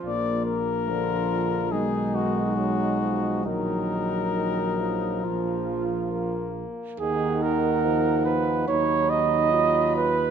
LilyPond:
<<
  \new Staff \with { instrumentName = "Trumpet" } { \time 4/4 \key ees \minor \tempo 4 = 71 d''8 bes'4. aes'8 fis'4. | bes'2.~ bes'8 r8 | ges''2 b''2 | }
  \new Staff \with { instrumentName = "Trumpet" } { \time 4/4 \key ees \minor f'8 r8 f'4 dis'4 dis'4 | ees'2 f'4. r8 | aes'8 bes'4 ces''8 des''8 dis''4 b'8 | }
  \new Staff \with { instrumentName = "French horn" } { \time 4/4 \key ees \minor bes4 f4 aes2 | ges2 f4. r8 | ees'2 dis'4 f'4 | }
  \new Staff \with { instrumentName = "Trombone" } { \clef bass \time 4/4 \key ees \minor f8 r8 d8 d8 dis4 fis8 f8 | ees4 ees8 f4. bes4 | ees4 f4 fis2 | }
  \new Staff \with { instrumentName = "Tuba" } { \clef bass \time 4/4 \key ees \minor bes,,2 b,,2 | bes,,2 bes,,4. r8 | ees,2 dis,2 | }
>>